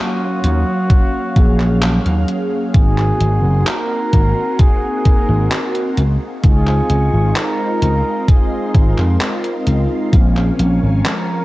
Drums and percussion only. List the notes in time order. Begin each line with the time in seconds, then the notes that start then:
0.44 closed hi-hat
0.90 kick, closed hi-hat
1.36 kick, closed hi-hat
1.60 clap
1.82 clap, closed hi-hat
2.06 closed hi-hat
2.28 closed hi-hat
2.74 kick, closed hi-hat
2.98 clap
3.21 closed hi-hat
3.67 clap, closed hi-hat
4.13 kick, closed hi-hat
4.59 kick, closed hi-hat
5.05 kick, closed hi-hat
5.51 clap, closed hi-hat
5.75 closed hi-hat
5.97 closed hi-hat
6.44 kick, closed hi-hat
6.67 clap
6.90 closed hi-hat
7.36 clap, closed hi-hat
7.82 closed hi-hat
8.28 kick, closed hi-hat
8.75 kick, closed hi-hat
8.98 clap
9.21 clap, closed hi-hat
9.44 closed hi-hat
9.67 closed hi-hat
10.13 kick, closed hi-hat
10.37 clap
10.59 closed hi-hat
11.05 clap, closed hi-hat